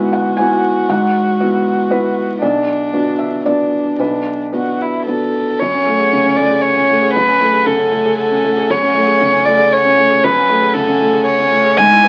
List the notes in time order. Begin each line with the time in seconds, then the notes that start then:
Already playing: G#2 B3 E4 F#4 G#5
0.13 F#5
0.37 B3 E4 F#4 G#5
0.89 G#2 F#5
1.40 B3 E4 F#4
1.91 B3 E4 F#4 B4
2.41 B1 D4 D5
2.93 B3 D4 F#4
3.19 E5
3.45 B3 D4 F#4 D5
3.98 B1 D4 B4
4.53 B3 D4 F#4
4.81 E4
5.06 B3 D4 F#4 A4
5.58 F#2 A3 C#5 F#5 G#5
5.74 C#4
5.86 A3
6.00 G#4
6.13 C#3
6.25 C#4
6.36 A3 D5
6.51 G#4
6.61 C#5
6.77 C#4
6.89 A3
7.03 G#4
7.13 F#2 B4
7.28 C#4
7.41 A3
7.53 G#4
7.66 C#3 A4
7.79 C#4
7.92 A3
8.06 G#4
8.17 A4
8.31 C#4
8.44 A3
8.57 G#4
8.69 F#2 C#5
8.82 C#4
8.94 A3
9.07 G#4
9.21 C#3
9.33 C#4
9.45 A3 D5
9.58 G#4
9.73 C#5
9.85 C#4
9.97 A3
10.10 G#4
10.23 F#2 A3 B4 F#5 G#5
10.36 C#4
10.49 A3
10.62 G#4
10.73 C#3 A4
10.88 C#4
11.01 A3
11.13 G#4
11.25 C#5
11.39 C#4
11.52 A3
11.64 G#4
11.76 G#2 B3 F#4 E5 G#5
11.92 E4
12.04 B3